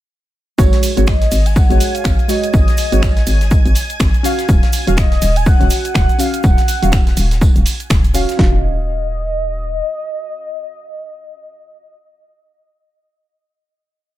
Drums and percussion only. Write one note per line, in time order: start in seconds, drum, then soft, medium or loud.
0.58 kick loud
0.58 tambourine medium
0.58 cabasa medium
0.73 snare medium
0.73 closed hi-hat medium
0.73 cabasa soft
0.83 open hi-hat loud
0.83 tambourine medium
0.83 cabasa loud
0.97 closed hi-hat medium
0.97 cabasa soft
1.07 finger snap loud
1.07 kick loud
1.07 snare loud
1.07 tambourine medium
1.07 cabasa soft
1.21 snare medium
1.21 closed hi-hat medium
1.21 cabasa soft
1.31 open hi-hat medium
1.31 cabasa medium
1.46 closed hi-hat medium
1.46 cabasa soft
1.56 kick loud
1.56 tambourine medium
1.56 cabasa medium
1.70 closed hi-hat soft
1.70 cabasa soft
1.80 open hi-hat loud
1.80 tambourine medium
1.80 cabasa medium
1.95 closed hi-hat medium
1.95 closed hi-hat soft
1.95 cabasa soft
2.04 finger snap loud
2.04 kick loud
2.04 snare loud
2.04 tambourine medium
2.04 cabasa medium
2.19 closed hi-hat soft
2.19 cabasa soft
2.29 open hi-hat medium
2.29 tambourine medium
2.29 cabasa loud
2.43 closed hi-hat medium
2.43 cabasa soft
2.53 kick loud
2.53 tambourine medium
2.53 cabasa medium
2.68 snare soft
2.68 closed hi-hat medium
2.68 cabasa soft
2.77 open hi-hat loud
2.77 tambourine medium
2.77 cabasa medium
2.92 closed hi-hat medium
2.92 cabasa soft
3.02 finger snap loud
3.02 kick loud
3.02 snare loud
3.02 tambourine medium
3.02 cabasa soft
3.16 snare medium
3.16 closed hi-hat medium
3.16 cabasa soft
3.27 open hi-hat loud
3.27 tambourine medium
3.27 cabasa loud
3.41 snare soft
3.41 closed hi-hat medium
3.41 cabasa soft
3.51 kick loud
3.51 tambourine loud
3.51 cabasa medium
3.65 closed hi-hat soft
3.65 cabasa soft
3.75 open hi-hat loud
3.75 tambourine medium
3.75 cabasa loud
3.90 closed hi-hat medium
3.90 cabasa soft
3.99 finger snap loud
3.99 kick loud
3.99 snare loud
3.99 tambourine medium
3.99 cabasa medium
4.14 closed hi-hat soft
4.14 cabasa soft
4.24 open hi-hat medium
4.24 tambourine medium
4.24 cabasa loud
4.38 snare soft
4.38 closed hi-hat medium
4.38 cabasa soft
4.49 kick loud
4.49 tambourine medium
4.49 cabasa medium
4.63 snare soft
4.63 closed hi-hat medium
4.63 cabasa soft
4.73 open hi-hat loud
4.73 tambourine medium
4.73 cabasa loud
4.87 closed hi-hat medium
4.87 cabasa soft
4.97 finger snap loud
4.97 kick loud
4.97 snare loud
4.97 tambourine medium
4.97 cabasa medium
5.12 snare soft
5.12 closed hi-hat medium
5.12 cabasa soft
5.22 open hi-hat loud
5.22 open hi-hat medium
5.22 cabasa loud
5.36 closed hi-hat medium
5.36 cabasa soft
5.46 kick loud
5.46 tambourine medium
5.46 cabasa medium
5.61 closed hi-hat soft
5.61 cabasa soft
5.70 open hi-hat loud
5.70 tambourine medium
5.70 cabasa loud
5.84 closed hi-hat soft
5.84 closed hi-hat medium
5.84 cabasa soft
5.94 finger snap loud
5.94 kick loud
5.94 snare loud
5.94 tambourine medium
5.94 cabasa medium
6.09 closed hi-hat soft
6.09 cabasa soft
6.18 open hi-hat loud
6.18 tambourine medium
6.18 cabasa loud
6.34 closed hi-hat medium
6.34 cabasa soft
6.43 kick loud
6.43 tambourine medium
6.43 cabasa medium
6.58 snare soft
6.58 closed hi-hat medium
6.58 cabasa soft
6.68 open hi-hat loud
6.68 tambourine medium
6.68 cabasa loud
6.83 closed hi-hat medium
6.83 cabasa soft
6.92 finger snap loud
6.92 kick loud
6.92 snare loud
6.92 tambourine medium
6.92 cabasa medium
7.07 snare soft
7.07 closed hi-hat medium
7.07 cabasa soft
7.17 open hi-hat loud
7.17 tambourine medium
7.17 cabasa medium
7.31 snare soft
7.31 closed hi-hat medium
7.31 cabasa soft
7.41 kick loud
7.41 tambourine medium
7.41 cabasa medium
7.56 closed hi-hat soft
7.56 cabasa soft
7.66 open hi-hat loud
7.66 tambourine medium
7.66 cabasa loud
7.80 closed hi-hat medium
7.80 cabasa soft
7.90 finger snap loud
7.90 kick loud
7.90 snare loud
7.90 tambourine loud
7.90 cabasa medium
8.04 closed hi-hat soft
8.04 cabasa soft
8.14 open hi-hat medium
8.14 tambourine medium
8.14 cabasa medium
8.29 snare soft
8.29 closed hi-hat medium
8.29 cabasa soft
8.39 kick loud
8.39 snare loud